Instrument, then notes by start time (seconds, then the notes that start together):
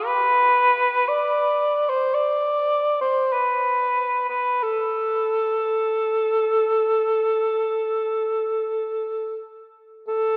cor anglais
0.06 B4
1.08 D5
1.89 C5
2.14 D5
3.01 C5
3.33 B4
4.29 B4
4.63 A4
10.08 A4